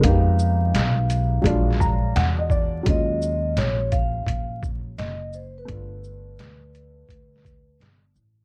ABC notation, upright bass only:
X:1
M:4/4
L:1/8
Q:"Swing 16ths" 1/4=85
K:Eblyd
V:1 name="Upright bass" clef=bass
F,,2 _C,,2 B,,,2 =E,,2 | E,,2 B,,,2 B,,,2 _G,,,2 | G,,,2 D,,2 D,,2 G,,, A,,, |]